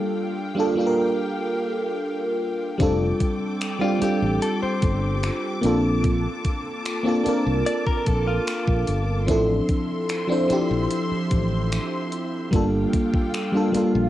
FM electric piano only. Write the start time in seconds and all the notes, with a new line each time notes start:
Already playing: G3 A#3 D4 F4 A4
0.55 G3 A#3 D4 F4
0.60 A4
0.75 G3 A#3 D4 F4
0.80 A4
0.87 A#4
2.78 G3 C4 D4 F4
2.83 A4
3.79 G3 C4 D4 F4
3.84 G4
3.99 G3 C4 D4 F4
4.04 G4
5.61 A#3 C4 D4 F4
5.66 A4
7.03 A#3 C4 D4 F4
7.08 A4
7.24 A#3 C4 D4 F4
7.28 A#4
9.26 E3 C4 D4 E4
9.31 F3 A4
10.27 F3 C4 D4 E4
10.32 C5
10.48 F3 C4 D4 E4
10.53 G4
12.51 G3 A#3 D4 F4
12.56 A4
13.52 G3 A#3 D4 F4
13.57 A4
13.72 G3 A#3 D4 F4
13.77 A4